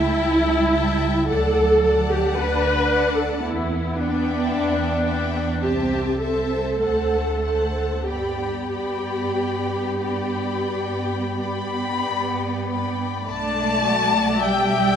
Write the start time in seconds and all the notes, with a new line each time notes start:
Already playing: A3 E4 E5 G5 A5
0.15 C#2 G3
0.71 E5 G5 A5
1.29 D2 F#3 A4 D5 F#5 A5
1.84 D5 F#5 A5
2.11 G4
2.37 D2 D4 B4
2.91 D5 F#5 A5
3.16 A4
3.43 E2 B3 E4
3.97 D4 D5 E5 G5
4.51 E2
5.05 D5 E5 G5
5.60 C2 C4 G4 C5 E5 A5
6.20 A4 C5 E5 A5
6.81 D2 A3 C5 F#5 A5
7.43 C5 F#5 A5
8.08 G2 B3 G4 D5 G5 B5
8.74 D5 G5 B5
9.38 G2
10.01 D5 G5 B5
10.71 G2
11.41 B3 D5 G5 B5
12.06 G2
12.69 D5 G5 B5
13.27 B1 A3 D4 D5 A5
13.85 F#4
14.39 G3 G4 E5 G5